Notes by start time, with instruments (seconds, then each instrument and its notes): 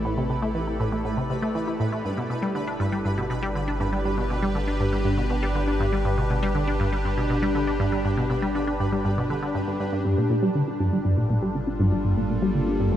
Already playing: analog synth bass A1, ambient pad A3 E4 G4 A4 D5, synth texture B4 B5
0.05 synth arpeggio sound A2
0.17 synth arpeggio sound C3
0.30 synth arpeggio sound C3
0.42 synth arpeggio sound A3
0.55 synth arpeggio sound E3
0.67 synth arpeggio sound E4
0.80 synth arpeggio sound A2
0.92 synth arpeggio sound A3
1.05 synth arpeggio sound A2
1.17 synth arpeggio sound C3
1.30 synth arpeggio sound C3
1.42 synth arpeggio sound A3
1.55 synth arpeggio sound E3
1.67 synth arpeggio sound E4
1.80 synth arpeggio sound A2
1.92 synth arpeggio sound A3
2.05 analog synth bass G1, synth arpeggio sound G2, ambient pad D4
2.17 synth arpeggio sound B2, ambient pad G4
2.27 synth arpeggio sound B2, ambient pad B4
2.42 synth arpeggio sound G3
2.55 synth arpeggio sound D3
2.67 synth arpeggio sound D4
2.80 synth arpeggio sound G2
2.92 synth arpeggio sound G3
3.05 synth arpeggio sound G2
3.18 synth arpeggio sound B2
3.30 synth arpeggio sound B2
3.43 synth arpeggio sound G3
3.55 synth arpeggio sound D3
3.68 synth arpeggio sound D4
3.80 synth arpeggio sound G2
3.93 synth arpeggio sound G3
4.05 synth arpeggio sound G2
4.18 synth arpeggio sound B2
4.30 synth arpeggio sound B2
4.43 synth arpeggio sound G3
4.55 synth arpeggio sound D3
4.68 synth arpeggio sound D4
4.80 synth arpeggio sound G2
4.93 synth arpeggio sound G3
5.05 synth arpeggio sound G2
5.18 synth arpeggio sound B2
5.30 synth arpeggio sound B2
5.43 synth arpeggio sound G3
5.55 synth arpeggio sound D3
5.68 synth arpeggio sound D4
5.80 synth arpeggio sound G2
5.93 synth arpeggio sound G3
6.05 synth arpeggio sound G2
6.18 synth arpeggio sound B2
6.30 synth arpeggio sound B2
6.43 synth arpeggio sound G3
6.55 synth arpeggio sound D3
6.68 synth arpeggio sound D4
6.80 synth arpeggio sound G2
6.93 synth arpeggio sound G3
7.05 synth arpeggio sound G2
7.17 synth arpeggio sound B2
7.30 synth arpeggio sound B2
7.42 synth arpeggio sound G3
7.55 synth arpeggio sound D3
7.67 synth arpeggio sound D4
7.80 synth arpeggio sound G2
7.92 synth arpeggio sound G3
8.05 synth arpeggio sound G2
8.17 synth arpeggio sound B2
8.30 synth arpeggio sound B2
8.42 synth arpeggio sound G3
8.55 synth arpeggio sound D3
8.67 synth arpeggio sound D4
8.80 synth arpeggio sound G2
8.93 synth arpeggio sound G3
9.05 synth arpeggio sound G2
9.18 synth arpeggio sound B2
9.30 synth arpeggio sound D3
9.43 synth arpeggio sound D3
9.55 synth arpeggio sound G2
9.68 synth arpeggio sound G2
9.80 synth arpeggio sound G2
9.93 synth arpeggio sound G2
10.05 analog synth bass G1, synth arpeggio sound G2, ambient pad G3, synth texture A4 A5
10.18 synth arpeggio sound A#2
10.30 synth arpeggio sound A#2
10.43 synth arpeggio sound G3
10.50 ambient pad F4
10.55 synth arpeggio sound D3, ambient pad A4
10.68 synth arpeggio sound D4
10.80 synth arpeggio sound G2
10.93 synth arpeggio sound G3
10.98 ambient pad A#3
11.05 synth arpeggio sound G2
11.17 synth arpeggio sound A#2
11.30 synth arpeggio sound A#2
11.42 synth arpeggio sound G3
11.55 synth arpeggio sound D3
11.67 synth arpeggio sound D4
11.80 synth arpeggio sound G2
11.92 synth arpeggio sound G3
12.05 synth arpeggio sound G2
12.17 synth arpeggio sound A#2
12.30 synth arpeggio sound A#2
12.42 synth arpeggio sound G3
12.55 synth arpeggio sound D3
12.67 synth arpeggio sound D4
12.80 synth arpeggio sound G2
12.92 synth arpeggio sound G3